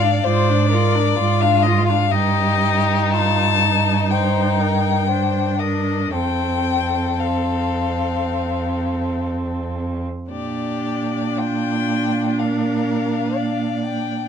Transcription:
Already playing: G#2 D5 F5
0.02 D4
0.23 G#2 F4 C5 D5
0.49 D4
0.70 F4 A#4
0.95 D4
1.16 G#2 F4
1.40 D4 F5
1.63 F4 D#5
1.87 D4 F5
2.10 G2 D#4 G4 D#5
3.13 F4 A5
3.63 D#4
4.11 D#4 C5 G5
4.59 A#4
5.08 D4 C5
5.59 A#4 D#5
6.11 F2 C4 A4 G5
7.18 C4 F5
10.30 A#2 D4 G4 D5
11.38 F4 G5
12.38 A#4 F5
13.36 D5
13.83 G5

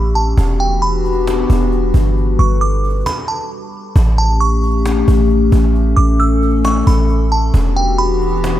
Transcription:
Already playing: A1 A3 C#4 G4 B5
0.15 A5, cajon slap
0.37 E1 E3 B3 D4 F#4 G4, cajon bass
0.60 G5, cajon slap
0.82 B5, cajon slap
1.05 cajon slap
1.12 cajon slap
1.20 cajon slap
1.27 cajon slap
1.50 E1, cajon bass
1.55 cajon slap
1.61 cajon slap
1.66 cajon slap
1.72 cajon slap
1.94 G1, cajon bass
2.16 G3 A4 B4, cajon slap
2.39 G1 C#6, cajon slap
2.61 D6, cajon slap
2.84 cajon slap
2.89 cajon slap
2.95 cajon slap
3.01 cajon slap
3.06 B5, cajon bass, cajon slap
3.28 A5
3.96 A1 A3 C#4 G4, cajon bass
4.18 A5, cajon slap
4.40 C#6, cajon slap
4.63 cajon slap
4.70 cajon slap
4.78 cajon slap
4.86 cajon slap
5.08 A1, cajon bass
5.13 cajon slap
5.19 cajon slap
5.24 cajon slap
5.30 cajon slap
5.52 A1, cajon bass
5.75 A4, cajon slap
5.96 A1 D6, cajon slap
6.19 E6, cajon slap
6.42 cajon slap
6.49 cajon slap
6.57 cajon slap
6.65 C#6, cajon slap
6.87 A1 B5, cajon bass
6.92 cajon slap
6.98 cajon slap
7.04 cajon slap
7.09 cajon slap
7.32 A5, cajon slap
7.54 E1 E3 B3 D4 F#4 G4, cajon bass
7.76 G5, cajon slap
7.98 B5, cajon slap
8.21 cajon slap
8.29 cajon slap
8.36 cajon slap
8.44 cajon slap

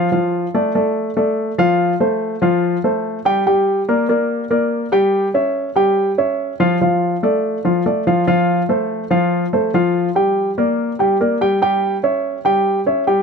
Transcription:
0.12 F3 F4 F5
0.54 A3 A4 D5
0.75 A3 A4 D5
1.17 A3 A4 D5
1.58 F3 F4 F5
2.00 A3 A4 C5
2.42 F3 F4 F5
2.84 A3 A4 C5
3.25 G3 G4 G5
3.47 G3 G4 G5
3.88 A#3 A#4 D5
4.09 A#3 A#4 D5
4.50 A#3 A#4 D5
4.92 G3 G4 G5
5.34 C#4 C#5 E5
5.76 G3 G4 G5
6.18 C#4 C#5 E5
6.60 F3 F4 F5
6.81 F3 F4 F5
7.23 A3 A4 D5
7.65 F3 F4 F5
7.86 A3 A4 D5
8.07 F3 F4 F5
8.27 F3 F4 F5
8.69 A3 A4 C5
9.11 F3 F4 F5
9.53 A3 A4 C5
9.74 F3 F4 F5
10.15 G3 G4 G5
10.58 A#3 A#4 D5
10.99 G3 G4 G5
11.20 A#3 A#4 D5
11.41 G3 G4 G5
11.62 G3 G4 G5
12.03 C#4 C#5 E5
12.45 G3 G4 G5
12.86 C#4 C#5 E5
13.07 G3 G4 G5

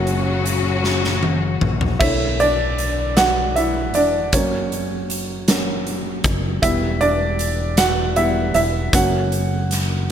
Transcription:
Already playing: F#1 A#2 C#3 F#3 A#3 C#4 F#4 F#5
0.07 closed hi-hat
0.46 closed hi-hat
0.84 snare
1.04 snare
1.23 high tom
1.61 A#1, mid tom
1.81 floor tom
1.99 B1 D3 A3 E4 C#5 E5, kick, crash
2.40 D4 D5, closed hi-hat
2.78 closed hi-hat
3.17 F#4 F#5, snare, closed hi-hat
3.56 E4 E5, closed hi-hat
3.94 E1 D4 D5, closed hi-hat
4.33 F#1 F#3 A#3 C#4 C#5, kick, closed hi-hat
4.72 closed hi-hat
5.10 closed hi-hat
5.48 F#3 A#3 C#4, snare, closed hi-hat
5.87 closed hi-hat
6.24 F#1, kick, closed hi-hat
6.62 E1 G3 B3 E4 E5, kick, closed hi-hat
7.01 D4 D5, closed hi-hat
7.39 closed hi-hat
7.77 F#4 F#5, snare, closed hi-hat
8.16 G3 B3 E4 E5, closed hi-hat
8.54 E1 E4 E5, closed hi-hat
8.93 F#1 F#3 A#3 C#4 F#4 F#5, kick, closed hi-hat
9.32 closed hi-hat
9.71 snare, closed hi-hat

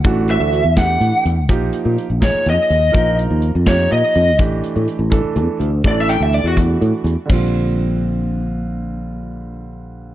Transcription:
0.04 A1 E3 A3 D4 F#4, kick, closed hi-hat
0.28 E5, closed hi-hat
0.40 D2
0.53 closed hi-hat
0.64 E2
0.76 E3 A3 D4 G4 F#5, kick, snare, closed hi-hat
1.00 A2, closed hi-hat
1.25 E2, closed hi-hat
1.49 A#1 F3 A#3 D#4 G4, kick, closed hi-hat
1.73 closed hi-hat
1.85 A#2
1.98 closed hi-hat
2.10 A#1
2.20 F3 A#3 D#4 G#4 C#5, kick, snare, closed hi-hat
2.46 F2 D#5, closed hi-hat
2.70 D#2, closed hi-hat
2.92 A#1 F3 A#3 D#4 A#4, kick, closed hi-hat
3.19 closed hi-hat
3.30 D#2
3.42 closed hi-hat
3.55 F2
3.66 F3 A#3 D#4 G4 C#5, kick, snare, closed hi-hat
3.91 A#2 D#5, closed hi-hat
4.15 F2, closed hi-hat
4.38 A1 E3 A3 D4 G4, kick, closed hi-hat
4.64 closed hi-hat
4.76 A2
4.88 closed hi-hat
4.99 A1
5.10 E3 A3 D4 A4, kick, closed hi-hat
5.25 muted fretless electric bass stroke
5.36 E2, closed hi-hat
5.60 D2, closed hi-hat
5.84 A1 E3 A3 D4 A4 D5, kick, closed hi-hat
6.00 E5
6.09 G5, closed hi-hat
6.20 D2 E5
6.33 D5, closed hi-hat
6.44 E2 F#4
6.57 E3 A3 D4 F#4, kick, closed hi-hat
6.81 A2, closed hi-hat
7.04 E2, closed hi-hat
7.25 D3 G3 C4
7.30 A#1 F4, kick, crash

